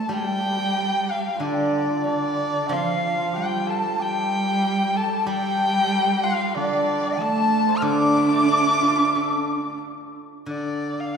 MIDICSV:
0, 0, Header, 1, 6, 480
1, 0, Start_track
1, 0, Tempo, 652174
1, 72, Time_signature, 4, 2, 24, 8
1, 2471, Tempo, 642398
1, 6791, Tempo, 677966
1, 8229, End_track
2, 0, Start_track
2, 0, Title_t, "Dizi"
2, 0, Program_c, 0, 73
2, 0, Note_on_c, 0, 81, 64
2, 76, Note_on_c, 0, 79, 76
2, 88, Note_off_c, 0, 81, 0
2, 1034, Note_on_c, 0, 74, 66
2, 1045, Note_off_c, 0, 79, 0
2, 1510, Note_off_c, 0, 74, 0
2, 1514, Note_on_c, 0, 74, 70
2, 1961, Note_on_c, 0, 79, 56
2, 1972, Note_off_c, 0, 74, 0
2, 1998, Note_on_c, 0, 77, 81
2, 2009, Note_off_c, 0, 79, 0
2, 2455, Note_on_c, 0, 79, 71
2, 2466, Note_off_c, 0, 77, 0
2, 2704, Note_on_c, 0, 81, 77
2, 2715, Note_off_c, 0, 79, 0
2, 2899, Note_off_c, 0, 81, 0
2, 2899, Note_on_c, 0, 81, 57
2, 2944, Note_on_c, 0, 79, 76
2, 2955, Note_off_c, 0, 81, 0
2, 3230, Note_off_c, 0, 79, 0
2, 3428, Note_on_c, 0, 79, 81
2, 3666, Note_on_c, 0, 81, 82
2, 3677, Note_off_c, 0, 79, 0
2, 3859, Note_off_c, 0, 81, 0
2, 3859, Note_on_c, 0, 81, 63
2, 3911, Note_on_c, 0, 79, 83
2, 3922, Note_off_c, 0, 81, 0
2, 4383, Note_off_c, 0, 79, 0
2, 4388, Note_on_c, 0, 79, 78
2, 4616, Note_on_c, 0, 77, 78
2, 4627, Note_off_c, 0, 79, 0
2, 4806, Note_off_c, 0, 77, 0
2, 4806, Note_on_c, 0, 77, 59
2, 4851, Note_on_c, 0, 74, 74
2, 4862, Note_off_c, 0, 77, 0
2, 5331, Note_on_c, 0, 81, 74
2, 5342, Note_off_c, 0, 74, 0
2, 5763, Note_off_c, 0, 81, 0
2, 5773, Note_on_c, 0, 89, 57
2, 5821, Note_on_c, 0, 86, 85
2, 5832, Note_off_c, 0, 89, 0
2, 7258, Note_off_c, 0, 86, 0
2, 8229, End_track
3, 0, Start_track
3, 0, Title_t, "Erhu"
3, 0, Program_c, 1, 110
3, 105, Note_on_c, 1, 79, 100
3, 815, Note_on_c, 1, 77, 78
3, 826, Note_off_c, 1, 79, 0
3, 1053, Note_on_c, 1, 74, 74
3, 1064, Note_off_c, 1, 77, 0
3, 1512, Note_off_c, 1, 74, 0
3, 1516, Note_on_c, 1, 74, 92
3, 2009, Note_on_c, 1, 77, 89
3, 2020, Note_off_c, 1, 74, 0
3, 2472, Note_on_c, 1, 79, 82
3, 2483, Note_off_c, 1, 77, 0
3, 2728, Note_on_c, 1, 81, 81
3, 2739, Note_off_c, 1, 79, 0
3, 2970, Note_on_c, 1, 79, 96
3, 2981, Note_off_c, 1, 81, 0
3, 3673, Note_on_c, 1, 81, 85
3, 3684, Note_off_c, 1, 79, 0
3, 3909, Note_off_c, 1, 81, 0
3, 3913, Note_on_c, 1, 79, 112
3, 4621, Note_on_c, 1, 77, 90
3, 4632, Note_off_c, 1, 79, 0
3, 4864, Note_off_c, 1, 77, 0
3, 4870, Note_on_c, 1, 74, 83
3, 5356, Note_on_c, 1, 81, 98
3, 5367, Note_off_c, 1, 74, 0
3, 5768, Note_on_c, 1, 89, 68
3, 5779, Note_off_c, 1, 81, 0
3, 5813, Note_on_c, 1, 86, 109
3, 5824, Note_off_c, 1, 89, 0
3, 7254, Note_off_c, 1, 86, 0
3, 7739, Note_on_c, 1, 74, 70
3, 8109, Note_on_c, 1, 77, 64
3, 8119, Note_off_c, 1, 74, 0
3, 8223, Note_off_c, 1, 77, 0
3, 8229, End_track
4, 0, Start_track
4, 0, Title_t, "Hammered dulcimer"
4, 0, Program_c, 2, 15
4, 0, Note_on_c, 2, 62, 67
4, 0, Note_on_c, 2, 65, 66
4, 0, Note_on_c, 2, 69, 58
4, 0, Note_on_c, 2, 72, 47
4, 63, Note_on_c, 2, 67, 64
4, 123, Note_off_c, 2, 67, 0
4, 126, Note_on_c, 2, 67, 50
4, 175, Note_off_c, 2, 67, 0
4, 178, Note_on_c, 2, 67, 64
4, 232, Note_off_c, 2, 67, 0
4, 235, Note_on_c, 2, 67, 47
4, 292, Note_off_c, 2, 67, 0
4, 295, Note_on_c, 2, 67, 54
4, 338, Note_off_c, 2, 67, 0
4, 341, Note_on_c, 2, 67, 49
4, 410, Note_off_c, 2, 67, 0
4, 413, Note_on_c, 2, 67, 59
4, 465, Note_off_c, 2, 67, 0
4, 468, Note_on_c, 2, 67, 52
4, 497, Note_off_c, 2, 65, 0
4, 558, Note_off_c, 2, 67, 0
4, 561, Note_on_c, 2, 67, 65
4, 886, Note_off_c, 2, 62, 0
4, 995, Note_on_c, 2, 65, 51
4, 1035, Note_on_c, 2, 62, 62
4, 1395, Note_off_c, 2, 65, 0
4, 1398, Note_on_c, 2, 65, 55
4, 1509, Note_off_c, 2, 62, 0
4, 1512, Note_on_c, 2, 62, 63
4, 1718, Note_off_c, 2, 72, 0
4, 1974, Note_off_c, 2, 65, 0
4, 1977, Note_on_c, 2, 65, 75
4, 1984, Note_off_c, 2, 69, 0
4, 2336, Note_off_c, 2, 65, 0
4, 2339, Note_on_c, 2, 65, 65
4, 2449, Note_off_c, 2, 67, 0
4, 2452, Note_on_c, 2, 67, 75
4, 2707, Note_on_c, 2, 69, 76
4, 2946, Note_off_c, 2, 67, 0
4, 2949, Note_on_c, 2, 67, 79
4, 3659, Note_off_c, 2, 69, 0
4, 3662, Note_on_c, 2, 69, 76
4, 3892, Note_off_c, 2, 67, 0
4, 3895, Note_on_c, 2, 67, 82
4, 4286, Note_off_c, 2, 62, 0
4, 4564, Note_off_c, 2, 67, 0
4, 4567, Note_on_c, 2, 67, 59
4, 4620, Note_off_c, 2, 65, 0
4, 4623, Note_on_c, 2, 65, 79
4, 4871, Note_on_c, 2, 62, 72
4, 5349, Note_off_c, 2, 69, 0
4, 5352, Note_on_c, 2, 69, 77
4, 5701, Note_on_c, 2, 72, 82
4, 5823, Note_on_c, 2, 74, 86
4, 6907, Note_off_c, 2, 67, 0
4, 7123, Note_off_c, 2, 65, 0
4, 7499, Note_off_c, 2, 69, 0
4, 7614, Note_off_c, 2, 62, 0
4, 7617, Note_off_c, 2, 74, 0
4, 7629, Note_off_c, 2, 72, 0
4, 8229, End_track
5, 0, Start_track
5, 0, Title_t, "Cello"
5, 0, Program_c, 3, 42
5, 72, Note_on_c, 3, 55, 76
5, 1004, Note_off_c, 3, 55, 0
5, 1037, Note_on_c, 3, 50, 70
5, 1487, Note_off_c, 3, 50, 0
5, 1525, Note_on_c, 3, 50, 62
5, 1985, Note_on_c, 3, 53, 75
5, 1996, Note_off_c, 3, 50, 0
5, 2476, Note_on_c, 3, 55, 71
5, 2487, Note_off_c, 3, 53, 0
5, 2933, Note_off_c, 3, 55, 0
5, 2938, Note_on_c, 3, 55, 87
5, 3873, Note_off_c, 3, 55, 0
5, 3899, Note_on_c, 3, 55, 90
5, 4861, Note_on_c, 3, 50, 79
5, 4872, Note_off_c, 3, 55, 0
5, 5337, Note_on_c, 3, 57, 83
5, 5348, Note_off_c, 3, 50, 0
5, 5812, Note_on_c, 3, 62, 96
5, 5824, Note_off_c, 3, 57, 0
5, 7254, Note_off_c, 3, 62, 0
5, 8229, End_track
6, 0, Start_track
6, 0, Title_t, "Guzheng"
6, 0, Program_c, 4, 107
6, 65, Note_on_c, 4, 55, 60
6, 1028, Note_on_c, 4, 50, 53
6, 1512, Note_off_c, 4, 55, 0
6, 1982, Note_on_c, 4, 53, 66
6, 2466, Note_off_c, 4, 50, 0
6, 3426, Note_off_c, 4, 53, 0
6, 3897, Note_on_c, 4, 55, 68
6, 5338, Note_off_c, 4, 55, 0
6, 5806, Note_on_c, 4, 50, 64
6, 6065, Note_on_c, 4, 57, 49
6, 6303, Note_on_c, 4, 62, 46
6, 6549, Note_on_c, 4, 65, 45
6, 6800, Note_on_c, 4, 69, 41
6, 7023, Note_off_c, 4, 57, 0
6, 7250, Note_off_c, 4, 50, 0
6, 7259, Note_off_c, 4, 62, 0
6, 7500, Note_off_c, 4, 65, 0
6, 7729, Note_on_c, 4, 50, 44
6, 7745, Note_off_c, 4, 69, 0
6, 8229, Note_off_c, 4, 50, 0
6, 8229, End_track
0, 0, End_of_file